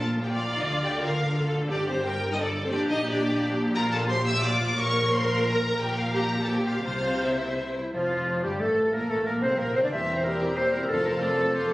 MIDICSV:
0, 0, Header, 1, 12, 480
1, 0, Start_track
1, 0, Tempo, 342857
1, 924, Time_signature, 3, 2, 24, 8
1, 8592, Tempo, 362100
1, 10992, Tempo, 327511
1, 16541, End_track
2, 0, Start_track
2, 0, Title_t, "Violin section"
2, 0, Program_c, 0, 48
2, 338, Note_on_c, 0, 79, 59
2, 383, Note_off_c, 0, 79, 0
2, 442, Note_on_c, 0, 77, 70
2, 797, Note_off_c, 0, 77, 0
2, 826, Note_on_c, 0, 75, 62
2, 930, Note_on_c, 0, 77, 78
2, 936, Note_off_c, 0, 75, 0
2, 1027, Note_off_c, 0, 77, 0
2, 1175, Note_on_c, 0, 79, 79
2, 1271, Note_off_c, 0, 79, 0
2, 1422, Note_on_c, 0, 77, 76
2, 2127, Note_off_c, 0, 77, 0
2, 2391, Note_on_c, 0, 74, 85
2, 2610, Note_off_c, 0, 74, 0
2, 2626, Note_on_c, 0, 72, 79
2, 2860, Note_off_c, 0, 72, 0
2, 2865, Note_on_c, 0, 79, 91
2, 3225, Note_off_c, 0, 79, 0
2, 3250, Note_on_c, 0, 75, 84
2, 3292, Note_off_c, 0, 75, 0
2, 3343, Note_on_c, 0, 74, 69
2, 3695, Note_off_c, 0, 74, 0
2, 3720, Note_on_c, 0, 72, 76
2, 3813, Note_on_c, 0, 74, 92
2, 3828, Note_off_c, 0, 72, 0
2, 3911, Note_off_c, 0, 74, 0
2, 4049, Note_on_c, 0, 75, 90
2, 4286, Note_on_c, 0, 74, 87
2, 4290, Note_off_c, 0, 75, 0
2, 4992, Note_off_c, 0, 74, 0
2, 5252, Note_on_c, 0, 82, 107
2, 5347, Note_off_c, 0, 82, 0
2, 5490, Note_on_c, 0, 81, 93
2, 5584, Note_off_c, 0, 81, 0
2, 5712, Note_on_c, 0, 84, 107
2, 5950, Note_off_c, 0, 84, 0
2, 5954, Note_on_c, 0, 88, 106
2, 6189, Note_off_c, 0, 88, 0
2, 6190, Note_on_c, 0, 86, 99
2, 6669, Note_off_c, 0, 86, 0
2, 6673, Note_on_c, 0, 85, 119
2, 7152, Note_off_c, 0, 85, 0
2, 7163, Note_on_c, 0, 84, 110
2, 7638, Note_off_c, 0, 84, 0
2, 7647, Note_on_c, 0, 82, 106
2, 8111, Note_off_c, 0, 82, 0
2, 8116, Note_on_c, 0, 79, 107
2, 8354, Note_off_c, 0, 79, 0
2, 8358, Note_on_c, 0, 77, 94
2, 8594, Note_on_c, 0, 82, 96
2, 8596, Note_off_c, 0, 77, 0
2, 8943, Note_off_c, 0, 82, 0
2, 8966, Note_on_c, 0, 81, 78
2, 9062, Note_on_c, 0, 79, 81
2, 9072, Note_off_c, 0, 81, 0
2, 9157, Note_off_c, 0, 79, 0
2, 9298, Note_on_c, 0, 77, 70
2, 9525, Note_off_c, 0, 77, 0
2, 9541, Note_on_c, 0, 77, 82
2, 10021, Note_off_c, 0, 77, 0
2, 10036, Note_on_c, 0, 76, 66
2, 10763, Note_off_c, 0, 76, 0
2, 10994, Note_on_c, 0, 65, 55
2, 11671, Note_off_c, 0, 65, 0
2, 11716, Note_on_c, 0, 67, 53
2, 11943, Note_on_c, 0, 69, 55
2, 11958, Note_off_c, 0, 67, 0
2, 12428, Note_off_c, 0, 69, 0
2, 12445, Note_on_c, 0, 70, 63
2, 12673, Note_on_c, 0, 69, 57
2, 12682, Note_off_c, 0, 70, 0
2, 12919, Note_on_c, 0, 70, 63
2, 12921, Note_off_c, 0, 69, 0
2, 13017, Note_off_c, 0, 70, 0
2, 13167, Note_on_c, 0, 72, 63
2, 13404, Note_off_c, 0, 72, 0
2, 13409, Note_on_c, 0, 70, 65
2, 13650, Note_off_c, 0, 70, 0
2, 13660, Note_on_c, 0, 72, 63
2, 13770, Note_on_c, 0, 74, 53
2, 13775, Note_off_c, 0, 72, 0
2, 13889, Note_off_c, 0, 74, 0
2, 13900, Note_on_c, 0, 84, 51
2, 14116, Note_off_c, 0, 84, 0
2, 14138, Note_on_c, 0, 82, 49
2, 14369, Note_on_c, 0, 84, 50
2, 14370, Note_off_c, 0, 82, 0
2, 14607, Note_off_c, 0, 84, 0
2, 14615, Note_on_c, 0, 82, 53
2, 14850, Note_off_c, 0, 82, 0
2, 14850, Note_on_c, 0, 84, 51
2, 15069, Note_off_c, 0, 84, 0
2, 15075, Note_on_c, 0, 82, 52
2, 15310, Note_on_c, 0, 84, 60
2, 15316, Note_off_c, 0, 82, 0
2, 15533, Note_on_c, 0, 81, 57
2, 15536, Note_off_c, 0, 84, 0
2, 15780, Note_on_c, 0, 84, 58
2, 15785, Note_off_c, 0, 81, 0
2, 16023, Note_on_c, 0, 81, 56
2, 16027, Note_off_c, 0, 84, 0
2, 16263, Note_on_c, 0, 84, 59
2, 16267, Note_off_c, 0, 81, 0
2, 16490, Note_off_c, 0, 84, 0
2, 16541, End_track
3, 0, Start_track
3, 0, Title_t, "Flute"
3, 0, Program_c, 1, 73
3, 10983, Note_on_c, 1, 65, 54
3, 11664, Note_off_c, 1, 65, 0
3, 11712, Note_on_c, 1, 67, 52
3, 11800, Note_off_c, 1, 67, 0
3, 11960, Note_on_c, 1, 69, 53
3, 12437, Note_off_c, 1, 69, 0
3, 12442, Note_on_c, 1, 70, 60
3, 12692, Note_on_c, 1, 69, 58
3, 12714, Note_off_c, 1, 70, 0
3, 12909, Note_off_c, 1, 69, 0
3, 12918, Note_on_c, 1, 70, 61
3, 13146, Note_off_c, 1, 70, 0
3, 13155, Note_on_c, 1, 72, 61
3, 13243, Note_off_c, 1, 72, 0
3, 13383, Note_on_c, 1, 70, 65
3, 13471, Note_off_c, 1, 70, 0
3, 13636, Note_on_c, 1, 72, 59
3, 13737, Note_off_c, 1, 72, 0
3, 13746, Note_on_c, 1, 74, 55
3, 13805, Note_off_c, 1, 74, 0
3, 13865, Note_on_c, 1, 84, 51
3, 14363, Note_on_c, 1, 82, 56
3, 14385, Note_off_c, 1, 84, 0
3, 14836, Note_on_c, 1, 79, 58
3, 14858, Note_off_c, 1, 82, 0
3, 15303, Note_off_c, 1, 79, 0
3, 15312, Note_on_c, 1, 81, 62
3, 15780, Note_off_c, 1, 81, 0
3, 15789, Note_on_c, 1, 81, 60
3, 16247, Note_off_c, 1, 81, 0
3, 16256, Note_on_c, 1, 86, 66
3, 16541, Note_off_c, 1, 86, 0
3, 16541, End_track
4, 0, Start_track
4, 0, Title_t, "Oboe"
4, 0, Program_c, 2, 68
4, 10995, Note_on_c, 2, 65, 56
4, 11709, Note_on_c, 2, 67, 53
4, 11731, Note_off_c, 2, 65, 0
4, 11951, Note_on_c, 2, 69, 55
4, 11973, Note_off_c, 2, 67, 0
4, 12432, Note_off_c, 2, 69, 0
4, 12441, Note_on_c, 2, 70, 65
4, 12674, Note_on_c, 2, 69, 59
4, 12696, Note_off_c, 2, 70, 0
4, 12907, Note_on_c, 2, 70, 64
4, 12929, Note_off_c, 2, 69, 0
4, 13157, Note_on_c, 2, 72, 64
4, 13179, Note_off_c, 2, 70, 0
4, 13382, Note_on_c, 2, 70, 66
4, 13404, Note_off_c, 2, 72, 0
4, 13630, Note_on_c, 2, 72, 67
4, 13652, Note_off_c, 2, 70, 0
4, 13770, Note_on_c, 2, 74, 55
4, 13792, Note_off_c, 2, 72, 0
4, 13883, Note_off_c, 2, 74, 0
4, 13892, Note_on_c, 2, 79, 49
4, 14364, Note_on_c, 2, 76, 56
4, 14386, Note_off_c, 2, 79, 0
4, 15311, Note_on_c, 2, 77, 64
4, 15333, Note_off_c, 2, 76, 0
4, 15772, Note_off_c, 2, 77, 0
4, 15781, Note_on_c, 2, 74, 64
4, 16254, Note_on_c, 2, 72, 68
4, 16276, Note_off_c, 2, 74, 0
4, 16525, Note_off_c, 2, 72, 0
4, 16541, End_track
5, 0, Start_track
5, 0, Title_t, "Clarinet"
5, 0, Program_c, 3, 71
5, 10759, Note_on_c, 3, 64, 57
5, 10970, Note_off_c, 3, 64, 0
5, 10978, Note_on_c, 3, 65, 60
5, 11709, Note_on_c, 3, 67, 54
5, 11731, Note_off_c, 3, 65, 0
5, 11949, Note_on_c, 3, 69, 61
5, 11971, Note_off_c, 3, 67, 0
5, 12418, Note_off_c, 3, 69, 0
5, 12427, Note_on_c, 3, 70, 70
5, 12673, Note_off_c, 3, 70, 0
5, 12684, Note_on_c, 3, 69, 62
5, 12908, Note_off_c, 3, 69, 0
5, 12917, Note_on_c, 3, 70, 68
5, 13028, Note_off_c, 3, 70, 0
5, 13154, Note_on_c, 3, 72, 66
5, 13395, Note_on_c, 3, 70, 77
5, 13417, Note_off_c, 3, 72, 0
5, 13638, Note_off_c, 3, 70, 0
5, 13647, Note_on_c, 3, 72, 74
5, 13701, Note_off_c, 3, 72, 0
5, 13783, Note_on_c, 3, 74, 60
5, 13834, Note_off_c, 3, 74, 0
5, 13883, Note_on_c, 3, 76, 76
5, 14235, Note_off_c, 3, 76, 0
5, 14244, Note_on_c, 3, 72, 69
5, 14332, Note_off_c, 3, 72, 0
5, 14341, Note_on_c, 3, 70, 80
5, 14582, Note_off_c, 3, 70, 0
5, 14591, Note_on_c, 3, 67, 79
5, 14827, Note_on_c, 3, 72, 91
5, 14849, Note_off_c, 3, 67, 0
5, 15058, Note_off_c, 3, 72, 0
5, 15067, Note_on_c, 3, 70, 83
5, 15286, Note_off_c, 3, 70, 0
5, 15294, Note_on_c, 3, 69, 96
5, 15530, Note_off_c, 3, 69, 0
5, 15539, Note_on_c, 3, 70, 84
5, 15651, Note_off_c, 3, 70, 0
5, 15782, Note_on_c, 3, 69, 86
5, 16490, Note_off_c, 3, 69, 0
5, 16541, End_track
6, 0, Start_track
6, 0, Title_t, "Violin section"
6, 0, Program_c, 4, 48
6, 309, Note_on_c, 4, 67, 51
6, 430, Note_on_c, 4, 65, 65
6, 432, Note_off_c, 4, 67, 0
6, 791, Note_on_c, 4, 63, 55
6, 799, Note_off_c, 4, 65, 0
6, 918, Note_off_c, 4, 63, 0
6, 921, Note_on_c, 4, 65, 71
6, 1162, Note_off_c, 4, 65, 0
6, 1168, Note_on_c, 4, 67, 66
6, 1406, Note_on_c, 4, 65, 63
6, 1407, Note_off_c, 4, 67, 0
6, 2133, Note_off_c, 4, 65, 0
6, 2369, Note_on_c, 4, 62, 69
6, 2467, Note_off_c, 4, 62, 0
6, 2626, Note_on_c, 4, 60, 67
6, 2721, Note_off_c, 4, 60, 0
6, 2862, Note_on_c, 4, 67, 75
6, 2974, Note_off_c, 4, 67, 0
6, 3226, Note_on_c, 4, 63, 61
6, 3273, Note_off_c, 4, 63, 0
6, 3337, Note_on_c, 4, 62, 60
6, 3449, Note_off_c, 4, 62, 0
6, 3715, Note_on_c, 4, 60, 66
6, 3760, Note_off_c, 4, 60, 0
6, 3818, Note_on_c, 4, 62, 83
6, 4053, Note_on_c, 4, 63, 73
6, 4055, Note_off_c, 4, 62, 0
6, 4151, Note_off_c, 4, 63, 0
6, 4300, Note_on_c, 4, 62, 77
6, 4999, Note_off_c, 4, 62, 0
6, 5245, Note_on_c, 4, 70, 94
6, 5469, Note_off_c, 4, 70, 0
6, 5484, Note_on_c, 4, 69, 87
6, 5580, Note_off_c, 4, 69, 0
6, 5726, Note_on_c, 4, 72, 93
6, 5820, Note_off_c, 4, 72, 0
6, 5957, Note_on_c, 4, 76, 94
6, 6190, Note_on_c, 4, 74, 81
6, 6191, Note_off_c, 4, 76, 0
6, 6659, Note_off_c, 4, 74, 0
6, 6668, Note_on_c, 4, 73, 94
6, 7140, Note_off_c, 4, 73, 0
6, 7162, Note_on_c, 4, 72, 89
6, 7638, Note_off_c, 4, 72, 0
6, 7641, Note_on_c, 4, 70, 87
6, 8117, Note_off_c, 4, 70, 0
6, 8124, Note_on_c, 4, 67, 89
6, 8358, Note_off_c, 4, 67, 0
6, 8367, Note_on_c, 4, 65, 76
6, 8596, Note_off_c, 4, 65, 0
6, 8600, Note_on_c, 4, 70, 84
6, 8941, Note_on_c, 4, 69, 67
6, 8946, Note_off_c, 4, 70, 0
6, 9050, Note_on_c, 4, 67, 72
6, 9058, Note_off_c, 4, 69, 0
6, 9289, Note_off_c, 4, 67, 0
6, 9289, Note_on_c, 4, 65, 63
6, 9514, Note_off_c, 4, 65, 0
6, 9530, Note_on_c, 4, 65, 71
6, 10016, Note_off_c, 4, 65, 0
6, 10034, Note_on_c, 4, 64, 57
6, 10733, Note_off_c, 4, 64, 0
6, 10748, Note_on_c, 4, 64, 48
6, 10843, Note_off_c, 4, 64, 0
6, 10978, Note_on_c, 4, 65, 52
6, 11698, Note_off_c, 4, 65, 0
6, 11712, Note_on_c, 4, 67, 50
6, 11811, Note_off_c, 4, 67, 0
6, 11968, Note_on_c, 4, 69, 51
6, 12441, Note_off_c, 4, 69, 0
6, 12445, Note_on_c, 4, 70, 63
6, 12683, Note_off_c, 4, 70, 0
6, 12684, Note_on_c, 4, 69, 53
6, 12781, Note_off_c, 4, 69, 0
6, 12904, Note_on_c, 4, 70, 59
6, 13005, Note_off_c, 4, 70, 0
6, 13164, Note_on_c, 4, 72, 60
6, 13383, Note_on_c, 4, 70, 62
6, 13402, Note_off_c, 4, 72, 0
6, 13632, Note_off_c, 4, 70, 0
6, 13640, Note_on_c, 4, 72, 60
6, 13763, Note_off_c, 4, 72, 0
6, 13772, Note_on_c, 4, 74, 54
6, 13882, Note_on_c, 4, 76, 67
6, 13888, Note_off_c, 4, 74, 0
6, 14234, Note_off_c, 4, 76, 0
6, 14244, Note_on_c, 4, 72, 66
6, 14352, Note_on_c, 4, 70, 72
6, 14362, Note_off_c, 4, 72, 0
6, 14592, Note_on_c, 4, 67, 68
6, 14593, Note_off_c, 4, 70, 0
6, 14830, Note_on_c, 4, 72, 76
6, 14839, Note_off_c, 4, 67, 0
6, 15071, Note_on_c, 4, 70, 67
6, 15076, Note_off_c, 4, 72, 0
6, 15168, Note_off_c, 4, 70, 0
6, 15308, Note_on_c, 4, 69, 83
6, 15547, Note_off_c, 4, 69, 0
6, 15549, Note_on_c, 4, 70, 76
6, 15793, Note_off_c, 4, 70, 0
6, 15800, Note_on_c, 4, 69, 72
6, 16514, Note_off_c, 4, 69, 0
6, 16541, End_track
7, 0, Start_track
7, 0, Title_t, "Viola section"
7, 0, Program_c, 5, 48
7, 0, Note_on_c, 5, 65, 52
7, 401, Note_off_c, 5, 65, 0
7, 431, Note_on_c, 5, 74, 70
7, 1389, Note_off_c, 5, 74, 0
7, 1406, Note_on_c, 5, 70, 63
7, 1893, Note_off_c, 5, 70, 0
7, 1900, Note_on_c, 5, 69, 65
7, 2370, Note_off_c, 5, 69, 0
7, 2378, Note_on_c, 5, 67, 61
7, 2862, Note_off_c, 5, 67, 0
7, 2863, Note_on_c, 5, 70, 68
7, 3342, Note_on_c, 5, 69, 70
7, 3344, Note_off_c, 5, 70, 0
7, 3812, Note_off_c, 5, 69, 0
7, 3814, Note_on_c, 5, 67, 76
7, 5220, Note_off_c, 5, 67, 0
7, 5254, Note_on_c, 5, 65, 74
7, 5724, Note_on_c, 5, 67, 76
7, 5728, Note_off_c, 5, 65, 0
7, 6193, Note_on_c, 5, 65, 82
7, 6197, Note_off_c, 5, 67, 0
7, 6670, Note_off_c, 5, 65, 0
7, 6670, Note_on_c, 5, 70, 102
7, 8554, Note_off_c, 5, 70, 0
7, 8590, Note_on_c, 5, 67, 69
7, 9050, Note_off_c, 5, 67, 0
7, 9067, Note_on_c, 5, 67, 72
7, 9534, Note_off_c, 5, 67, 0
7, 9537, Note_on_c, 5, 72, 64
7, 10735, Note_off_c, 5, 72, 0
7, 10985, Note_on_c, 5, 53, 54
7, 11665, Note_off_c, 5, 53, 0
7, 11707, Note_on_c, 5, 55, 53
7, 11956, Note_on_c, 5, 57, 55
7, 11958, Note_off_c, 5, 55, 0
7, 12444, Note_off_c, 5, 57, 0
7, 12445, Note_on_c, 5, 58, 59
7, 12682, Note_off_c, 5, 58, 0
7, 12686, Note_on_c, 5, 57, 58
7, 12915, Note_on_c, 5, 58, 56
7, 12928, Note_off_c, 5, 57, 0
7, 13161, Note_on_c, 5, 60, 61
7, 13162, Note_off_c, 5, 58, 0
7, 13405, Note_on_c, 5, 58, 67
7, 13406, Note_off_c, 5, 60, 0
7, 13642, Note_on_c, 5, 60, 67
7, 13648, Note_off_c, 5, 58, 0
7, 13764, Note_off_c, 5, 60, 0
7, 13768, Note_on_c, 5, 62, 50
7, 13880, Note_on_c, 5, 67, 48
7, 13882, Note_on_c, 5, 58, 51
7, 13886, Note_off_c, 5, 62, 0
7, 14105, Note_off_c, 5, 67, 0
7, 14106, Note_off_c, 5, 58, 0
7, 14123, Note_on_c, 5, 64, 45
7, 14126, Note_on_c, 5, 60, 48
7, 14352, Note_on_c, 5, 58, 50
7, 14353, Note_on_c, 5, 67, 50
7, 14363, Note_off_c, 5, 64, 0
7, 14364, Note_off_c, 5, 60, 0
7, 14594, Note_on_c, 5, 60, 49
7, 14595, Note_on_c, 5, 64, 48
7, 14598, Note_off_c, 5, 58, 0
7, 14599, Note_off_c, 5, 67, 0
7, 14839, Note_off_c, 5, 60, 0
7, 14840, Note_off_c, 5, 64, 0
7, 14840, Note_on_c, 5, 58, 52
7, 14841, Note_on_c, 5, 67, 56
7, 15064, Note_off_c, 5, 58, 0
7, 15064, Note_off_c, 5, 67, 0
7, 15076, Note_on_c, 5, 64, 54
7, 15082, Note_on_c, 5, 60, 55
7, 15316, Note_off_c, 5, 64, 0
7, 15317, Note_on_c, 5, 65, 59
7, 15318, Note_on_c, 5, 57, 57
7, 15320, Note_off_c, 5, 60, 0
7, 15540, Note_off_c, 5, 57, 0
7, 15540, Note_off_c, 5, 65, 0
7, 15556, Note_on_c, 5, 60, 55
7, 15556, Note_on_c, 5, 69, 56
7, 15793, Note_on_c, 5, 65, 57
7, 15796, Note_off_c, 5, 60, 0
7, 15796, Note_off_c, 5, 69, 0
7, 15796, Note_on_c, 5, 57, 52
7, 16033, Note_on_c, 5, 69, 56
7, 16034, Note_off_c, 5, 65, 0
7, 16034, Note_on_c, 5, 60, 57
7, 16036, Note_off_c, 5, 57, 0
7, 16268, Note_on_c, 5, 65, 62
7, 16272, Note_off_c, 5, 69, 0
7, 16272, Note_on_c, 5, 57, 64
7, 16273, Note_off_c, 5, 60, 0
7, 16492, Note_off_c, 5, 65, 0
7, 16495, Note_off_c, 5, 57, 0
7, 16541, End_track
8, 0, Start_track
8, 0, Title_t, "French horn section"
8, 0, Program_c, 6, 60
8, 10976, Note_on_c, 6, 53, 55
8, 11660, Note_off_c, 6, 53, 0
8, 11716, Note_on_c, 6, 55, 50
8, 11956, Note_on_c, 6, 57, 57
8, 11957, Note_off_c, 6, 55, 0
8, 12434, Note_on_c, 6, 58, 68
8, 12445, Note_off_c, 6, 57, 0
8, 12677, Note_off_c, 6, 58, 0
8, 12684, Note_on_c, 6, 57, 60
8, 12927, Note_off_c, 6, 57, 0
8, 12933, Note_on_c, 6, 58, 62
8, 13157, Note_on_c, 6, 60, 62
8, 13171, Note_off_c, 6, 58, 0
8, 13268, Note_off_c, 6, 60, 0
8, 13395, Note_on_c, 6, 58, 73
8, 13638, Note_off_c, 6, 58, 0
8, 13638, Note_on_c, 6, 60, 62
8, 13764, Note_off_c, 6, 60, 0
8, 13769, Note_on_c, 6, 62, 57
8, 13823, Note_off_c, 6, 62, 0
8, 13888, Note_on_c, 6, 60, 57
8, 13895, Note_on_c, 6, 55, 57
8, 14053, Note_off_c, 6, 60, 0
8, 14059, Note_off_c, 6, 55, 0
8, 15325, Note_on_c, 6, 53, 67
8, 15331, Note_on_c, 6, 60, 72
8, 15489, Note_off_c, 6, 53, 0
8, 15493, Note_off_c, 6, 60, 0
8, 16541, End_track
9, 0, Start_track
9, 0, Title_t, "Bassoon"
9, 0, Program_c, 7, 70
9, 10983, Note_on_c, 7, 53, 54
9, 11707, Note_on_c, 7, 55, 53
9, 11729, Note_off_c, 7, 53, 0
9, 11948, Note_on_c, 7, 57, 53
9, 11969, Note_off_c, 7, 55, 0
9, 12428, Note_off_c, 7, 57, 0
9, 12437, Note_on_c, 7, 58, 61
9, 12548, Note_off_c, 7, 58, 0
9, 12675, Note_on_c, 7, 57, 49
9, 12901, Note_off_c, 7, 57, 0
9, 12910, Note_on_c, 7, 58, 64
9, 13148, Note_on_c, 7, 60, 63
9, 13170, Note_off_c, 7, 58, 0
9, 13380, Note_off_c, 7, 60, 0
9, 13389, Note_on_c, 7, 58, 62
9, 13638, Note_on_c, 7, 60, 66
9, 13660, Note_off_c, 7, 58, 0
9, 13752, Note_off_c, 7, 60, 0
9, 13761, Note_on_c, 7, 62, 55
9, 13869, Note_off_c, 7, 62, 0
9, 13878, Note_on_c, 7, 52, 51
9, 14356, Note_on_c, 7, 55, 56
9, 14378, Note_off_c, 7, 52, 0
9, 14824, Note_off_c, 7, 55, 0
9, 14833, Note_on_c, 7, 55, 60
9, 15309, Note_on_c, 7, 53, 65
9, 15331, Note_off_c, 7, 55, 0
9, 16541, Note_off_c, 7, 53, 0
9, 16541, End_track
10, 0, Start_track
10, 0, Title_t, "Cello section"
10, 0, Program_c, 8, 48
10, 0, Note_on_c, 8, 46, 59
10, 870, Note_off_c, 8, 46, 0
10, 926, Note_on_c, 8, 50, 61
10, 2349, Note_off_c, 8, 50, 0
10, 2377, Note_on_c, 8, 43, 68
10, 3822, Note_off_c, 8, 43, 0
10, 3827, Note_on_c, 8, 46, 72
10, 6619, Note_off_c, 8, 46, 0
10, 6674, Note_on_c, 8, 46, 82
10, 8085, Note_off_c, 8, 46, 0
10, 8123, Note_on_c, 8, 46, 80
10, 9492, Note_off_c, 8, 46, 0
10, 9538, Note_on_c, 8, 48, 68
10, 10760, Note_off_c, 8, 48, 0
10, 10985, Note_on_c, 8, 41, 58
10, 11665, Note_off_c, 8, 41, 0
10, 11706, Note_on_c, 8, 43, 53
10, 11954, Note_on_c, 8, 45, 54
10, 11957, Note_off_c, 8, 43, 0
10, 12439, Note_on_c, 8, 46, 62
10, 12443, Note_off_c, 8, 45, 0
10, 12537, Note_off_c, 8, 46, 0
10, 12677, Note_on_c, 8, 45, 54
10, 12915, Note_on_c, 8, 46, 62
10, 12918, Note_off_c, 8, 45, 0
10, 13157, Note_off_c, 8, 46, 0
10, 13164, Note_on_c, 8, 48, 60
10, 13403, Note_on_c, 8, 46, 62
10, 13407, Note_off_c, 8, 48, 0
10, 13636, Note_on_c, 8, 48, 64
10, 13647, Note_off_c, 8, 46, 0
10, 13760, Note_on_c, 8, 50, 54
10, 13763, Note_off_c, 8, 48, 0
10, 13881, Note_on_c, 8, 40, 60
10, 13882, Note_off_c, 8, 50, 0
10, 15257, Note_off_c, 8, 40, 0
10, 15318, Note_on_c, 8, 41, 73
10, 16541, Note_off_c, 8, 41, 0
10, 16541, End_track
11, 0, Start_track
11, 0, Title_t, "Timpani"
11, 0, Program_c, 10, 47
11, 15315, Note_on_c, 10, 41, 75
11, 15983, Note_off_c, 10, 41, 0
11, 16541, End_track
12, 0, Start_track
12, 0, Title_t, "Double bass section"
12, 0, Program_c, 11, 48
12, 0, Note_on_c, 11, 34, 53
12, 865, Note_off_c, 11, 34, 0
12, 923, Note_on_c, 11, 38, 55
12, 2347, Note_off_c, 11, 38, 0
12, 2374, Note_on_c, 11, 31, 59
12, 3821, Note_off_c, 11, 31, 0
12, 3822, Note_on_c, 11, 34, 67
12, 6617, Note_off_c, 11, 34, 0
12, 6672, Note_on_c, 11, 34, 83
12, 8084, Note_off_c, 11, 34, 0
12, 8108, Note_on_c, 11, 34, 76
12, 9485, Note_off_c, 11, 34, 0
12, 9537, Note_on_c, 11, 36, 61
12, 10759, Note_off_c, 11, 36, 0
12, 10982, Note_on_c, 11, 29, 50
12, 11663, Note_off_c, 11, 29, 0
12, 11712, Note_on_c, 11, 31, 51
12, 11948, Note_on_c, 11, 33, 53
12, 11960, Note_off_c, 11, 31, 0
12, 12438, Note_on_c, 11, 34, 63
12, 12440, Note_off_c, 11, 33, 0
12, 12536, Note_off_c, 11, 34, 0
12, 12669, Note_on_c, 11, 33, 56
12, 12914, Note_on_c, 11, 34, 62
12, 12915, Note_off_c, 11, 33, 0
12, 13157, Note_off_c, 11, 34, 0
12, 13157, Note_on_c, 11, 36, 61
12, 13402, Note_on_c, 11, 34, 66
12, 13404, Note_off_c, 11, 36, 0
12, 13644, Note_on_c, 11, 36, 61
12, 13647, Note_off_c, 11, 34, 0
12, 13767, Note_off_c, 11, 36, 0
12, 13889, Note_on_c, 11, 28, 56
12, 15261, Note_off_c, 11, 28, 0
12, 15318, Note_on_c, 11, 29, 69
12, 16541, Note_off_c, 11, 29, 0
12, 16541, End_track
0, 0, End_of_file